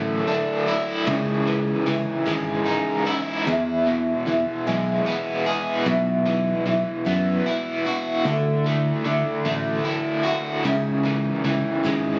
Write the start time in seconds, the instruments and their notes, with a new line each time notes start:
Already playing: fingered electric bass A1, twelve-string acoustic guitar D3 E3 A3 E4 F#4, overdriven electric guitar D3 F#3 A3
0.27 overdriven electric guitar D4
0.66 twelve-string acoustic guitar A3 E4 F#4, overdriven electric guitar E4
1.06 fingered electric bass C#2, twelve-string acoustic guitar C#3 E3 C#4 D#4 G#4, overdriven electric guitar C#3
1.48 overdriven electric guitar E3
1.86 fingered electric bass C#2, twelve-string acoustic guitar E3 C#4 D#4 G#4, overdriven electric guitar E3
2.27 fingered electric bass G#1, twelve-string acoustic guitar C#3 E3 C#4 D#4 G#4, overdriven electric guitar G#3
2.66 overdriven electric guitar D#4
3.06 twelve-string acoustic guitar C#4 G#4, overdriven electric guitar E4
3.46 overdriven electric guitar E2, fingered electric bass E2, twelve-string acoustic guitar E3 B3 E4 G#4
3.86 overdriven electric guitar B2
4.26 fingered electric bass E2, twelve-string acoustic guitar E3 B3 E4 G#4, overdriven electric guitar E3
4.67 fingered electric bass B1, twelve-string acoustic guitar E3 B3 E4 G#4, overdriven electric guitar G#3
5.06 overdriven electric guitar B3
5.45 twelve-string acoustic guitar B3 E4 G#4, overdriven electric guitar G#4
5.86 fingered electric bass B1, twelve-string acoustic guitar B2 E3 B3 E4 F#4, overdriven electric guitar B2
6.26 overdriven electric guitar E3
6.65 fingered electric bass B1, twelve-string acoustic guitar E3 B3 E4 F#4, overdriven electric guitar E3
7.05 fingered electric bass F#2, twelve-string acoustic guitar B2 E3 B3 E4 F#4, overdriven electric guitar B3
7.46 overdriven electric guitar E4
7.85 twelve-string acoustic guitar B3 E4 F#4, overdriven electric guitar F#4
8.25 fingered electric bass D2, overdriven electric guitar D3, twelve-string acoustic guitar D3 E3 A3 E4 F#4
8.66 overdriven electric guitar A3
9.05 fingered electric bass D2, overdriven electric guitar D3, twelve-string acoustic guitar E3 A3 E4 F#4
9.45 fingered electric bass A1, twelve-string acoustic guitar D3 E3 A3 E4 F#4, overdriven electric guitar A3
9.85 overdriven electric guitar E4
10.24 twelve-string acoustic guitar A3 E4 F#4, overdriven electric guitar F#4
10.65 fingered electric bass C#2, overdriven electric guitar C#3, twelve-string acoustic guitar C#3 E3 C#4 D#4 G#4
11.05 overdriven electric guitar E3
11.44 fingered electric bass C#2, twelve-string acoustic guitar E3 C#4 D#4 G#4, overdriven electric guitar E3
11.84 fingered electric bass G#1, twelve-string acoustic guitar C#3 E3 C#4 D#4 G#4, overdriven electric guitar G#3